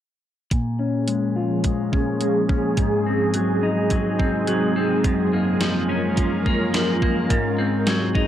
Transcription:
0.51 A#2 F3 A#3 C#4 G#4, kick, closed hi-hat
0.79 C#4
1.08 G#3, closed hi-hat
1.36 F4
1.64 G#3, kick, closed hi-hat
1.92 C#4, kick
2.21 G#3, closed hi-hat
2.49 C#4, kick
2.77 G#2 G#3 C4 D#4, kick, closed hi-hat
3.06 C4
3.34 F#3, closed hi-hat
3.63 D#4
3.90 F#3, kick, closed hi-hat
4.19 C4, kick
4.47 F#3, closed hi-hat
4.76 C4
5.04 F#2 C#4 F4 A#4, kick, closed hi-hat
5.33 A#3
5.61 F3, snare, closed hi-hat
5.89 C#4
6.17 F3, kick, closed hi-hat
6.46 A#3, kick
6.74 F3, snare, closed hi-hat
7.02 A#3, kick
7.30 G#2 F#3 C4 D#4 G#4, kick, closed hi-hat
7.58 C4
7.87 F#3, snare, closed hi-hat
8.15 D#4, kick

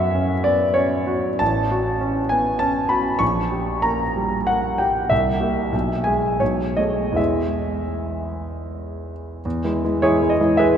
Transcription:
Already playing: F#2 F#4 E5 F#5
0.15 C#4
0.44 B3 D5
0.74 C#4 C#5
1.07 F#4
1.39 A1 A5
1.71 F#4
2.01 C#4
2.29 B3 G#5
2.59 C#4 A5
2.89 F#4 B5
3.19 A#1 C#6
3.52 G4
3.82 A#3 A#5
4.16 G3
4.47 A#3 F#5
4.78 G4 G5
5.10 C2 E5
5.40 A#3 G4
5.72 B1
6.04 G#3 G#4 G#5
6.40 B1 C#5
6.77 A3 G#4 D#5
7.12 E2 E3 G#3
7.16 G#4 E5
9.45 E2
9.64 E3 G#3 E4
9.84 E3 G#3 E4
10.02 E3 G#3 E4 G#4 C#5
10.22 E3 G#3 E4
10.30 D#5
10.40 E3 G#3 E4
10.57 E3 G#3 E4 G#4 B4 E5

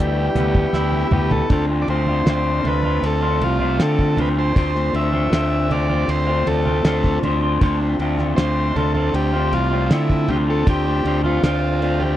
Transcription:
Already playing: D2 D3 E3 G3 B3 G4 E5 G5 B5
0.00 G4
0.35 D2 B3, closed hi-hat, high conga, low conga
0.54 kick, high conga
0.73 D2 E4, snare, high conga
0.92 high conga
1.11 D2 B3 G4, mid tom, low conga
1.30 A4, floor tom, low conga
1.49 D2 D3 A3 C4 F4 A4 D5 A5, kick, ride
1.68 A3 C4 F4
1.82 D5
1.88 D2 D3 A3 C4 F4 C5, ride
2.06 A3 C4 F4, high conga
2.26 D2 D3 A3 C4 F4, snare, ride
2.64 D2 D3 A3 C4 F4, ride, low conga
2.68 B4
2.83 A3 C4 F4, high conga
3.02 D2 A4, ride
3.22 A3 C4 F4
3.41 C2 F4, ride, high conga
3.59 A3 C4 F4, low conga
3.78 D3 A3 C4 F4 A4, snare, ride
3.99 kick
4.17 D2 D3 A3 C4 F4, ride, high conga, low conga
4.21 B4
4.37 A3 C4 F4 C5
4.56 D2 D3 A3 C4 F4 C5, kick, ride
4.74 A3 C4 F4, snare
4.93 D2 D3 A3 C4 F4 E5, ride
5.12 A3 C4 F4, high conga
5.31 D2 D3 A3 C4 F4, snare, ride
5.70 D3 A3 C4 F4 D5, ride, low conga
5.89 A3 C4 F4, high conga
6.08 D2 C5, ride
6.27 A3 C4 F4
6.46 D2 A4, ride, high conga
6.65 A3 C4 F4, low conga
6.84 D2 D3 A3 C4 F4, snare, ride
7.04 kick
7.22 D2 D3 A3 C4 F4, ride, high conga, low conga
7.42 A3 C4 F4
7.61 D2 D3 A3 C4 F4, kick, ride
7.81 A3 C4 F4
7.99 D2 D3 A3 C4 F4, ride
8.18 A3 C4 F4, snare, high conga
8.36 D2 D3 A3 C4 F4 C5, snare, ride
8.75 D2 D3 A3 C4 F4 A4, ride, low conga
8.94 A3 C4 F4 A4, high conga
9.14 D2 G4, ride
9.33 A3 C4 F4
9.52 C2 F4, ride, high conga
9.71 A3 C4 F4
9.86 F4
9.90 D3 A3 C4 E4 F4, snare, ride
10.10 kick
10.28 D2 D3 A3 C4 F4 G4, ride, high conga, low conga
10.47 A3 C4 F4 A4
10.66 D2 D3 A3 C4 F4 G4, kick, ride
10.86 A3 C4 F4
11.05 D2 D3 A3 C4 F4, ride
11.24 A3 C4 F4, high conga
11.43 D2 D3 A3 C4 F4, snare, ride
11.81 D3 A3 C4 F4, ride
12.00 A3 C4 F4 G4, high conga

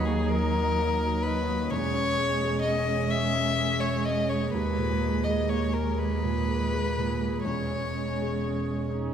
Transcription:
Already playing: D#2 F#3 A#3 D#4 F#4 D#5
0.05 A#3 G#4
0.28 A#4
0.54 D#4
0.77 A#3
1.01 F#4
1.22 D#4 B4
1.49 A#3
1.69 E1 E2 G#3 C#4 G#4 C#5
1.94 C#4
2.18 G#3
2.43 G#4
2.62 C#4 D#5
2.89 G#3
3.10 E5
3.36 C#4
3.60 G#3
3.80 C#5
3.85 G#4
4.05 D#5
4.10 C#4
4.29 G#3 C#5
4.51 D#2 A#3 B4 A#5
4.78 A#2
5.04 G#3
5.24 G#4 D#5
5.49 A#3 C#5
5.74 G#3 A#4
5.99 B4
6.24 A#2
6.48 G#3
6.72 G#4
6.97 A#2
7.20 G#3
7.44 E1 E2 G#3 C#4 G#4 C#5
7.71 C#4
7.97 G#3
8.22 G#4
8.46 C#4
8.70 G#3
8.94 C#4 D#4

